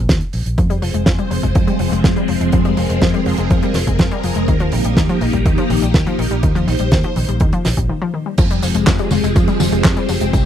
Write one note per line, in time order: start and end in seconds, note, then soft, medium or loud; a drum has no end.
0.09 0.20 D#2 loud
0.09 kick loud
0.09 snare loud
0.09 closed hi-hat medium
0.21 closed hi-hat soft
0.33 0.44 A#1 medium
0.33 open hi-hat loud
0.46 0.56 A#1 medium
0.46 closed hi-hat medium
0.58 0.79 F2 medium
0.58 0.69 F3 medium
0.58 7.86 F3 medium
0.58 4.44 G#3 medium
0.58 4.44 C4 medium
0.58 4.44 G#4 medium
0.58 2.51 C5 loud
0.58 kick loud
0.58 closed hi-hat medium
0.70 0.82 G3 loud
0.70 closed hi-hat soft
0.82 0.93 F1 medium
0.82 0.94 F3 medium
0.82 open hi-hat loud
0.94 1.05 F1 medium
0.94 1.06 G#3 medium
0.94 closed hi-hat medium
1.06 1.17 F2 medium
1.06 1.18 F3 medium
1.06 kick loud
1.06 snare loud
1.06 closed hi-hat medium
1.19 1.30 G3 medium
1.19 closed hi-hat soft
1.31 1.42 F1 medium
1.31 1.42 F3 medium
1.31 open hi-hat loud
1.43 1.54 F1 medium
1.43 1.55 G#3 medium
1.43 kick medium
1.43 closed hi-hat medium
1.55 1.66 F2 medium
1.55 1.67 F3 medium
1.55 kick loud
1.55 closed hi-hat medium
1.67 1.79 G3 loud
1.67 closed hi-hat soft
1.79 1.90 F1 medium
1.79 1.91 F3 medium
1.79 open hi-hat loud
1.92 2.03 F1 loud
1.92 2.03 G#3 medium
1.92 closed hi-hat medium
2.04 2.15 F2 medium
2.04 2.16 F3 medium
2.04 kick loud
2.04 snare loud
2.04 closed hi-hat medium
2.16 2.28 G3 loud
2.16 closed hi-hat soft
2.28 2.39 F1 medium
2.28 2.40 F3 medium
2.28 open hi-hat loud
2.41 2.51 F1 medium
2.41 2.52 G#3 medium
2.41 closed hi-hat medium
2.52 2.74 F2 medium
2.52 2.64 F3 medium
2.52 6.39 A#4 medium
2.52 kick loud
2.52 closed hi-hat medium
2.65 2.77 G3 loud
2.65 closed hi-hat soft
2.77 2.88 F1 medium
2.77 2.89 F3 medium
2.77 open hi-hat loud
2.89 3.00 F1 medium
2.89 3.01 G#3 medium
2.89 closed hi-hat medium
3.01 3.12 F2 medium
3.01 3.13 F3 medium
3.01 kick loud
3.01 snare loud
3.01 closed hi-hat medium
3.14 3.25 G3 loud
3.14 closed hi-hat soft
3.26 3.37 F1 medium
3.26 3.38 F3 medium
3.26 open hi-hat loud
3.38 3.49 F1 medium
3.38 3.50 G#3 medium
3.38 closed hi-hat medium
3.50 3.61 F2 medium
3.50 3.62 F3 medium
3.50 kick loud
3.50 closed hi-hat medium
3.63 3.74 G3 loud
3.63 closed hi-hat soft
3.74 3.86 F1 medium
3.74 3.86 F3 medium
3.74 snare medium
3.74 open hi-hat loud
3.87 3.98 F1 loud
3.87 3.99 G#3 medium
3.87 kick medium
3.87 closed hi-hat medium
3.99 4.10 F2 loud
3.99 4.11 F3 medium
3.99 kick loud
3.99 snare loud
3.99 closed hi-hat medium
4.11 4.23 G3 loud
4.11 closed hi-hat soft
4.24 4.34 F1 medium
4.24 4.35 F3 medium
4.24 open hi-hat loud
4.35 4.47 F1 medium
4.35 4.47 G#3 medium
4.35 closed hi-hat medium
4.48 4.69 D#2 medium
4.48 4.60 D#3 medium
4.48 7.86 A#3 medium
4.48 7.86 D#4 medium
4.48 7.86 G4 medium
4.48 kick loud
4.48 closed hi-hat medium
4.60 4.72 F3 loud
4.60 closed hi-hat soft
4.72 4.83 A#1 medium
4.72 4.84 D#3 medium
4.72 open hi-hat loud
4.84 4.95 A#1 medium
4.84 4.96 G3 medium
4.84 closed hi-hat medium
4.97 5.08 D#2 medium
4.97 5.08 D#3 medium
4.97 kick loud
4.97 snare loud
4.97 closed hi-hat medium
5.09 5.21 F3 medium
5.09 closed hi-hat soft
5.21 5.32 A#1 medium
5.21 5.33 D#3 medium
5.21 open hi-hat loud
5.33 5.44 A#1 medium
5.33 5.45 G3 medium
5.33 kick medium
5.33 closed hi-hat medium
5.46 5.56 D#2 loud
5.46 5.57 D#3 medium
5.46 kick loud
5.46 closed hi-hat medium
5.58 5.69 F3 loud
5.58 closed hi-hat soft
5.70 5.81 A#1 medium
5.70 5.82 D#3 medium
5.70 open hi-hat loud
5.82 5.93 A#1 loud
5.82 5.94 G3 medium
5.82 closed hi-hat medium
5.94 6.05 D#2 loud
5.94 6.06 D#3 medium
5.94 kick loud
5.94 snare loud
5.94 closed hi-hat medium
6.07 6.18 F3 loud
6.07 closed hi-hat soft
6.19 6.29 A#1 medium
6.19 6.30 D#3 medium
6.19 open hi-hat loud
6.31 6.42 A#1 medium
6.31 6.43 G3 medium
6.31 closed hi-hat medium
6.43 6.64 D#2 loud
6.43 6.55 D#3 medium
6.43 7.88 C5 medium
6.43 kick loud
6.43 closed hi-hat medium
6.55 6.67 F3 loud
6.55 closed hi-hat soft
6.67 6.78 A#1 medium
6.67 6.79 D#3 medium
6.67 open hi-hat loud
6.79 6.90 A#1 medium
6.79 6.91 G3 medium
6.79 closed hi-hat medium
6.92 7.03 D#2 medium
6.92 7.04 D#3 medium
6.92 kick loud
6.92 snare loud
6.92 closed hi-hat medium
7.04 7.16 F3 medium
7.04 closed hi-hat soft
7.16 7.27 A#1 loud
7.16 7.28 D#3 medium
7.16 open hi-hat loud
7.28 7.39 A#1 medium
7.28 7.40 G3 medium
7.28 closed hi-hat medium
7.40 7.51 D#2 medium
7.40 7.52 D#3 medium
7.40 kick loud
7.40 closed hi-hat medium
7.53 7.65 F3 loud
7.53 closed hi-hat soft
7.65 7.76 A#1 medium
7.65 7.77 D#3 medium
7.65 snare medium
7.65 open hi-hat loud
7.77 7.88 A#1 medium
7.77 7.89 G3 medium
7.77 kick medium
7.77 closed hi-hat medium
7.89 8.01 D#3 medium
8.02 8.13 F3 loud
8.14 8.25 D#3 medium
8.26 8.38 G3 medium
8.38 8.60 F2 loud
8.38 8.50 F3 medium
8.38 10.31 F3 medium
8.38 10.31 G#3 medium
8.38 10.46 C4 medium
8.38 10.46 G4 medium
8.38 10.46 C5 medium
8.38 kick loud
8.38 closed hi-hat medium
8.38 crash loud
8.38 tambourine soft
8.51 8.62 G3 loud
8.51 closed hi-hat medium
8.51 tambourine soft
8.62 8.73 F1 medium
8.62 8.74 F3 medium
8.62 open hi-hat loud
8.62 tambourine medium
8.75 8.86 F1 medium
8.75 8.87 G#3 medium
8.75 closed hi-hat medium
8.75 tambourine soft
8.87 8.98 F2 medium
8.87 8.99 F3 medium
8.87 kick loud
8.87 snare loud
8.87 clap medium
8.87 closed hi-hat medium
8.87 tambourine soft
8.99 9.11 G3 loud
8.99 closed hi-hat soft
8.99 tambourine soft
9.11 9.22 F1 loud
9.11 9.23 F3 medium
9.11 open hi-hat loud
9.11 high tom medium
9.11 tambourine medium
9.23 9.34 F1 medium
9.23 9.35 G#3 medium
9.23 closed hi-hat medium
9.23 tambourine soft
9.36 9.46 F2 loud
9.36 9.47 F3 medium
9.36 kick loud
9.36 closed hi-hat medium
9.36 tambourine soft
9.48 9.60 G3 loud
9.48 closed hi-hat soft
9.48 tambourine soft
9.60 9.71 F1 medium
9.60 9.72 F3 medium
9.60 open hi-hat loud
9.60 high tom medium
9.60 tambourine medium
9.72 9.83 F1 loud
9.72 9.84 G#3 medium
9.72 closed hi-hat medium
9.84 9.95 F2 loud
9.84 9.96 F3 medium
9.84 kick loud
9.84 snare loud
9.84 clap loud
9.84 closed hi-hat medium
9.84 tambourine soft
9.97 10.08 G3 loud
9.97 closed hi-hat soft
9.97 tambourine soft
10.09 10.20 F1 medium
10.09 10.21 F3 medium
10.09 open hi-hat loud
10.09 tambourine medium
10.20 10.32 F1 medium
10.20 10.33 G#3 medium
10.20 closed hi-hat medium
10.20 tambourine soft
10.33 10.46 C2 medium
10.33 10.45 C3 medium
10.33 10.46 D#3 medium
10.33 10.46 A#3 medium
10.33 kick loud
10.33 closed hi-hat medium
10.33 tambourine soft